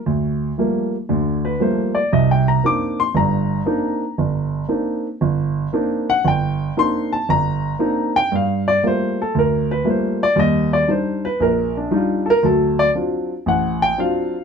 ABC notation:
X:1
M:4/4
L:1/8
Q:"Swing" 1/4=116
K:Gm
V:1 name="Grand piano"
z4 z =B c d | (3e g b d' c' b4- | b2 z4 z ^f | g2 c' a b3 g |
f d c A B =B c d | e d c =B _B D F [AB] | A d z2 ^f g ^e2 |]
V:2 name="Grand piano"
D,,2 [F,G,A,B,] z [D,,D,]2 [F,G,A,B,] z | [C,,C,]2 [B,CDE] z [G,,,G,,]2 [B,CDE] z | G,,,2 [B,CDE] z G,,,2 [B,CDE] z | G,,,2 [B,CDE] z G,,,2 [B,CDE] z |
G,,2 [G,A,B,F] z D,,2 [G,A,B,F] z | [E,,G,]2 [G,DE] z B,,,2 [G,DE] z | [D,,^F,]2 [F,CD^E] z A,,,2 [F,CDE] z |]